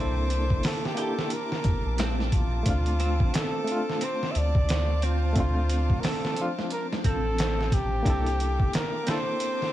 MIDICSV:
0, 0, Header, 1, 8, 480
1, 0, Start_track
1, 0, Key_signature, -1, "minor"
1, 0, Tempo, 674157
1, 1896, Time_signature, 4, 2, 24, 8
1, 6926, End_track
2, 0, Start_track
2, 0, Title_t, "Violin section"
2, 0, Program_c, 0, 48
2, 0, Note_on_c, 0, 58, 78
2, 0, Note_on_c, 0, 76, 74
2, 0, Note_on_c, 0, 81, 79
2, 0, Note_on_c, 0, 86, 89
2, 1864, Note_off_c, 0, 58, 0
2, 1864, Note_off_c, 0, 76, 0
2, 1892, Note_on_c, 0, 72, 81
2, 1893, Note_on_c, 0, 77, 73
2, 5706, Note_off_c, 0, 72, 0
2, 5706, Note_off_c, 0, 77, 0
2, 5709, Note_off_c, 0, 86, 0
2, 5730, Note_on_c, 0, 58, 86
2, 5732, Note_on_c, 0, 86, 94
2, 5733, Note_on_c, 0, 76, 78
2, 6926, Note_off_c, 0, 58, 0
2, 6926, Note_off_c, 0, 76, 0
2, 6926, Note_off_c, 0, 81, 0
2, 6926, Note_off_c, 0, 86, 0
2, 6926, End_track
3, 0, Start_track
3, 0, Title_t, "Synth texture"
3, 0, Program_c, 1, 99
3, 0, Note_on_c, 1, 60, 81
3, 0, Note_on_c, 1, 81, 84
3, 6926, Note_off_c, 1, 60, 0
3, 6926, Note_off_c, 1, 81, 0
3, 6926, End_track
4, 0, Start_track
4, 0, Title_t, "Muted trumpet"
4, 0, Program_c, 2, 59
4, 0, Note_on_c, 2, 72, 101
4, 468, Note_on_c, 2, 69, 89
4, 479, Note_off_c, 2, 72, 0
4, 614, Note_on_c, 2, 67, 86
4, 624, Note_off_c, 2, 69, 0
4, 708, Note_on_c, 2, 69, 90
4, 719, Note_off_c, 2, 67, 0
4, 947, Note_on_c, 2, 70, 99
4, 958, Note_off_c, 2, 69, 0
4, 1479, Note_off_c, 2, 70, 0
4, 1671, Note_on_c, 2, 65, 104
4, 2394, Note_on_c, 2, 69, 99
4, 2405, Note_off_c, 2, 65, 0
4, 2876, Note_on_c, 2, 72, 103
4, 2887, Note_off_c, 2, 69, 0
4, 3072, Note_on_c, 2, 76, 76
4, 3083, Note_off_c, 2, 72, 0
4, 3117, Note_on_c, 2, 74, 115
4, 3128, Note_off_c, 2, 76, 0
4, 3590, Note_on_c, 2, 65, 100
4, 3601, Note_off_c, 2, 74, 0
4, 4273, Note_on_c, 2, 70, 74
4, 4284, Note_off_c, 2, 65, 0
4, 4307, Note_on_c, 2, 69, 103
4, 4317, Note_off_c, 2, 70, 0
4, 4599, Note_off_c, 2, 69, 0
4, 4789, Note_on_c, 2, 70, 102
4, 4894, Note_off_c, 2, 70, 0
4, 5029, Note_on_c, 2, 69, 114
4, 5511, Note_on_c, 2, 67, 111
4, 5522, Note_off_c, 2, 69, 0
4, 6231, Note_on_c, 2, 70, 107
4, 6242, Note_off_c, 2, 67, 0
4, 6476, Note_on_c, 2, 72, 113
4, 6486, Note_off_c, 2, 70, 0
4, 6926, Note_off_c, 2, 72, 0
4, 6926, End_track
5, 0, Start_track
5, 0, Title_t, "Reed electric piano"
5, 0, Program_c, 3, 4
5, 0, Control_c, 3, 64, 127
5, 0, Note_on_c, 3, 58, 96
5, 0, Note_on_c, 3, 62, 95
5, 0, Note_on_c, 3, 64, 95
5, 0, Note_on_c, 3, 69, 100
5, 7, Note_off_c, 3, 69, 0
5, 7, Note_on_c, 3, 69, 102
5, 662, Note_off_c, 3, 58, 0
5, 671, Note_off_c, 3, 62, 0
5, 676, Note_on_c, 3, 58, 92
5, 679, Note_off_c, 3, 64, 0
5, 688, Note_off_c, 3, 69, 0
5, 694, Note_on_c, 3, 62, 84
5, 710, Note_on_c, 3, 64, 81
5, 727, Note_on_c, 3, 67, 106
5, 1863, Note_off_c, 3, 58, 0
5, 1872, Note_off_c, 3, 62, 0
5, 1873, Note_on_c, 3, 57, 99
5, 1880, Note_off_c, 3, 64, 0
5, 1888, Note_off_c, 3, 67, 0
5, 1891, Note_on_c, 3, 60, 85
5, 1907, Control_c, 3, 64, 0
5, 1908, Note_on_c, 3, 62, 90
5, 1923, Note_on_c, 3, 65, 106
5, 2018, Control_c, 3, 64, 127
5, 2581, Note_off_c, 3, 57, 0
5, 2590, Note_off_c, 3, 60, 0
5, 2595, Note_on_c, 3, 57, 96
5, 2599, Note_off_c, 3, 62, 0
5, 2606, Note_off_c, 3, 65, 0
5, 2611, Note_on_c, 3, 60, 81
5, 2628, Note_on_c, 3, 62, 81
5, 2646, Note_on_c, 3, 65, 102
5, 3782, Note_off_c, 3, 57, 0
5, 3791, Note_off_c, 3, 60, 0
5, 3795, Note_on_c, 3, 57, 98
5, 3799, Note_off_c, 3, 62, 0
5, 3808, Note_off_c, 3, 65, 0
5, 3813, Note_on_c, 3, 60, 95
5, 3828, Note_on_c, 3, 62, 89
5, 3846, Note_on_c, 3, 65, 113
5, 4502, Note_off_c, 3, 57, 0
5, 4511, Note_off_c, 3, 60, 0
5, 4514, Note_on_c, 3, 53, 91
5, 4519, Note_off_c, 3, 62, 0
5, 4528, Note_off_c, 3, 65, 0
5, 4531, Note_on_c, 3, 60, 90
5, 4548, Note_on_c, 3, 62, 88
5, 4567, Note_on_c, 3, 65, 105
5, 5702, Note_off_c, 3, 53, 0
5, 5711, Note_off_c, 3, 60, 0
5, 5715, Note_on_c, 3, 58, 107
5, 5719, Note_off_c, 3, 62, 0
5, 5728, Note_off_c, 3, 65, 0
5, 5732, Note_on_c, 3, 62, 92
5, 5745, Control_c, 3, 64, 0
5, 5749, Note_on_c, 3, 64, 95
5, 5766, Note_on_c, 3, 69, 114
5, 5879, Control_c, 3, 64, 127
5, 6423, Note_off_c, 3, 58, 0
5, 6431, Note_off_c, 3, 62, 0
5, 6432, Note_on_c, 3, 58, 93
5, 6439, Note_off_c, 3, 64, 0
5, 6448, Note_off_c, 3, 69, 0
5, 6449, Note_on_c, 3, 62, 86
5, 6467, Note_on_c, 3, 64, 86
5, 6483, Note_on_c, 3, 69, 106
5, 6926, Note_off_c, 3, 58, 0
5, 6926, Note_off_c, 3, 62, 0
5, 6926, Note_off_c, 3, 64, 0
5, 6926, Note_off_c, 3, 69, 0
5, 6926, End_track
6, 0, Start_track
6, 0, Title_t, "Clean electric guitar"
6, 0, Program_c, 4, 27
6, 0, Note_on_c, 4, 60, 93
6, 208, Note_off_c, 4, 60, 0
6, 696, Note_on_c, 4, 67, 72
6, 926, Note_off_c, 4, 67, 0
6, 1419, Note_on_c, 4, 60, 106
6, 1648, Note_off_c, 4, 60, 0
6, 2137, Note_on_c, 4, 60, 74
6, 2837, Note_off_c, 4, 60, 0
6, 2859, Note_on_c, 4, 60, 92
6, 3088, Note_off_c, 4, 60, 0
6, 3582, Note_on_c, 4, 60, 77
6, 4280, Note_off_c, 4, 60, 0
6, 4301, Note_on_c, 4, 60, 91
6, 4529, Note_off_c, 4, 60, 0
6, 5020, Note_on_c, 4, 60, 79
6, 5719, Note_off_c, 4, 60, 0
6, 5736, Note_on_c, 4, 60, 103
6, 5966, Note_off_c, 4, 60, 0
6, 6457, Note_on_c, 4, 60, 76
6, 6926, Note_off_c, 4, 60, 0
6, 6926, End_track
7, 0, Start_track
7, 0, Title_t, "Sub bass"
7, 0, Program_c, 5, 38
7, 0, Note_on_c, 5, 36, 96
7, 362, Note_on_c, 5, 31, 99
7, 372, Note_off_c, 5, 36, 0
7, 445, Note_off_c, 5, 31, 0
7, 1176, Note_on_c, 5, 31, 79
7, 1302, Note_off_c, 5, 31, 0
7, 1324, Note_on_c, 5, 34, 95
7, 1879, Note_off_c, 5, 34, 0
7, 1897, Note_on_c, 5, 38, 96
7, 2282, Note_on_c, 5, 33, 101
7, 2293, Note_off_c, 5, 38, 0
7, 2366, Note_off_c, 5, 33, 0
7, 3102, Note_on_c, 5, 38, 91
7, 4203, Note_on_c, 5, 33, 105
7, 4214, Note_off_c, 5, 38, 0
7, 4286, Note_off_c, 5, 33, 0
7, 5018, Note_on_c, 5, 33, 106
7, 5718, Note_off_c, 5, 33, 0
7, 5740, Note_on_c, 5, 36, 91
7, 6123, Note_on_c, 5, 31, 96
7, 6134, Note_off_c, 5, 36, 0
7, 6206, Note_off_c, 5, 31, 0
7, 6926, End_track
8, 0, Start_track
8, 0, Title_t, "Drums"
8, 214, Note_on_c, 9, 42, 72
8, 285, Note_off_c, 9, 42, 0
8, 358, Note_on_c, 9, 36, 88
8, 430, Note_off_c, 9, 36, 0
8, 450, Note_on_c, 9, 46, 80
8, 462, Note_on_c, 9, 38, 114
8, 521, Note_off_c, 9, 46, 0
8, 533, Note_off_c, 9, 38, 0
8, 608, Note_on_c, 9, 38, 55
8, 679, Note_off_c, 9, 38, 0
8, 690, Note_on_c, 9, 42, 69
8, 762, Note_off_c, 9, 42, 0
8, 844, Note_on_c, 9, 38, 56
8, 915, Note_off_c, 9, 38, 0
8, 928, Note_on_c, 9, 42, 86
8, 999, Note_off_c, 9, 42, 0
8, 1082, Note_on_c, 9, 38, 52
8, 1154, Note_off_c, 9, 38, 0
8, 1167, Note_on_c, 9, 42, 70
8, 1172, Note_on_c, 9, 36, 98
8, 1238, Note_off_c, 9, 42, 0
8, 1244, Note_off_c, 9, 36, 0
8, 1411, Note_on_c, 9, 42, 93
8, 1422, Note_on_c, 9, 38, 118
8, 1482, Note_off_c, 9, 42, 0
8, 1493, Note_off_c, 9, 38, 0
8, 1569, Note_on_c, 9, 38, 40
8, 1640, Note_off_c, 9, 38, 0
8, 1653, Note_on_c, 9, 42, 72
8, 1654, Note_on_c, 9, 36, 102
8, 1724, Note_off_c, 9, 42, 0
8, 1726, Note_off_c, 9, 36, 0
8, 1892, Note_on_c, 9, 42, 97
8, 1894, Note_on_c, 9, 36, 109
8, 1963, Note_off_c, 9, 42, 0
8, 1965, Note_off_c, 9, 36, 0
8, 2036, Note_on_c, 9, 42, 47
8, 2107, Note_off_c, 9, 42, 0
8, 2134, Note_on_c, 9, 42, 69
8, 2205, Note_off_c, 9, 42, 0
8, 2279, Note_on_c, 9, 36, 95
8, 2350, Note_off_c, 9, 36, 0
8, 2377, Note_on_c, 9, 42, 91
8, 2389, Note_on_c, 9, 38, 124
8, 2448, Note_off_c, 9, 42, 0
8, 2460, Note_off_c, 9, 38, 0
8, 2616, Note_on_c, 9, 42, 72
8, 2687, Note_off_c, 9, 42, 0
8, 2774, Note_on_c, 9, 38, 39
8, 2845, Note_off_c, 9, 38, 0
8, 2855, Note_on_c, 9, 42, 89
8, 2926, Note_off_c, 9, 42, 0
8, 3011, Note_on_c, 9, 38, 45
8, 3082, Note_off_c, 9, 38, 0
8, 3098, Note_on_c, 9, 42, 69
8, 3169, Note_off_c, 9, 42, 0
8, 3240, Note_on_c, 9, 36, 103
8, 3311, Note_off_c, 9, 36, 0
8, 3337, Note_on_c, 9, 42, 94
8, 3349, Note_on_c, 9, 38, 120
8, 3408, Note_off_c, 9, 42, 0
8, 3420, Note_off_c, 9, 38, 0
8, 3576, Note_on_c, 9, 42, 73
8, 3647, Note_off_c, 9, 42, 0
8, 3813, Note_on_c, 9, 42, 91
8, 3816, Note_on_c, 9, 36, 118
8, 3884, Note_off_c, 9, 42, 0
8, 3887, Note_off_c, 9, 36, 0
8, 4055, Note_on_c, 9, 42, 69
8, 4126, Note_off_c, 9, 42, 0
8, 4200, Note_on_c, 9, 36, 96
8, 4271, Note_off_c, 9, 36, 0
8, 4294, Note_on_c, 9, 46, 79
8, 4306, Note_on_c, 9, 38, 112
8, 4365, Note_off_c, 9, 46, 0
8, 4377, Note_off_c, 9, 38, 0
8, 4448, Note_on_c, 9, 38, 57
8, 4519, Note_off_c, 9, 38, 0
8, 4532, Note_on_c, 9, 42, 77
8, 4603, Note_off_c, 9, 42, 0
8, 4689, Note_on_c, 9, 38, 56
8, 4760, Note_off_c, 9, 38, 0
8, 4774, Note_on_c, 9, 42, 92
8, 4845, Note_off_c, 9, 42, 0
8, 4931, Note_on_c, 9, 38, 51
8, 5002, Note_off_c, 9, 38, 0
8, 5015, Note_on_c, 9, 42, 73
8, 5016, Note_on_c, 9, 36, 100
8, 5086, Note_off_c, 9, 42, 0
8, 5087, Note_off_c, 9, 36, 0
8, 5258, Note_on_c, 9, 42, 92
8, 5269, Note_on_c, 9, 38, 123
8, 5329, Note_off_c, 9, 42, 0
8, 5340, Note_off_c, 9, 38, 0
8, 5416, Note_on_c, 9, 38, 38
8, 5487, Note_off_c, 9, 38, 0
8, 5496, Note_on_c, 9, 36, 102
8, 5498, Note_on_c, 9, 42, 70
8, 5567, Note_off_c, 9, 36, 0
8, 5569, Note_off_c, 9, 42, 0
8, 5736, Note_on_c, 9, 36, 113
8, 5739, Note_on_c, 9, 42, 94
8, 5807, Note_off_c, 9, 36, 0
8, 5810, Note_off_c, 9, 42, 0
8, 5884, Note_on_c, 9, 42, 47
8, 5955, Note_off_c, 9, 42, 0
8, 5981, Note_on_c, 9, 42, 71
8, 6052, Note_off_c, 9, 42, 0
8, 6121, Note_on_c, 9, 36, 90
8, 6192, Note_off_c, 9, 36, 0
8, 6219, Note_on_c, 9, 42, 88
8, 6230, Note_on_c, 9, 38, 115
8, 6290, Note_off_c, 9, 42, 0
8, 6301, Note_off_c, 9, 38, 0
8, 6456, Note_on_c, 9, 42, 84
8, 6467, Note_on_c, 9, 38, 104
8, 6527, Note_off_c, 9, 42, 0
8, 6538, Note_off_c, 9, 38, 0
8, 6693, Note_on_c, 9, 42, 93
8, 6765, Note_off_c, 9, 42, 0
8, 6851, Note_on_c, 9, 38, 47
8, 6922, Note_off_c, 9, 38, 0
8, 6926, End_track
0, 0, End_of_file